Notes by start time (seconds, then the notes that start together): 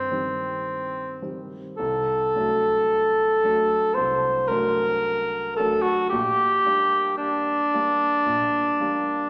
Already playing: G2 D#3 G3 C4
0.11 D#3 G3 C4
1.22 D#3 G3 C4
1.77 C2 A4
2.35 F#3 A3 D4
3.43 F#3 A3 D4
3.94 C2 C5
4.47 F#3 A3 D4 A#4
5.56 F#3 A3 D4 A4
5.82 F#4
6.09 A#1 G4
6.65 G3 A#3 D4
7.17 D4
7.74 G3 A#3 D4
8.26 A#1
8.80 G3 A#3 D4